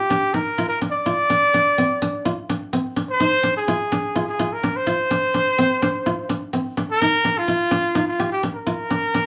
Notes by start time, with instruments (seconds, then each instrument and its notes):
Already playing: trumpet G4
0.10 koto D4
0.34 koto D#4, trumpet A#4
0.58 koto F4
0.69 trumpet A#4
0.82 koto D4
0.92 trumpet D5
1.06 koto F4
1.30 koto D4
1.54 koto D4
1.78 koto C4
2.02 koto D4
2.25 koto F4
2.50 koto D4
2.73 koto C4
2.96 koto D4
3.10 trumpet C5
3.20 koto D#4
3.43 koto D4
3.57 trumpet G#4
3.68 koto F4
3.92 koto D4
4.16 koto F4
4.29 trumpet G#4
4.39 koto F4
4.53 trumpet A#4
4.64 koto D4
4.76 trumpet C5
4.87 koto F4
5.11 koto D4
5.34 koto D4
5.58 koto C4
5.82 koto D4
6.06 koto F4
6.29 koto D4
6.53 koto C4
6.77 koto D4
6.92 trumpet A#4
7.02 koto D#4
7.25 koto D4
7.38 trumpet F4
7.48 koto F4
7.71 koto D4
7.95 koto D#4
8.08 trumpet F4
8.20 koto G4
8.32 trumpet G4
8.43 koto D4
8.55 trumpet A#4
8.67 koto F4
8.91 koto D4
9.14 koto D4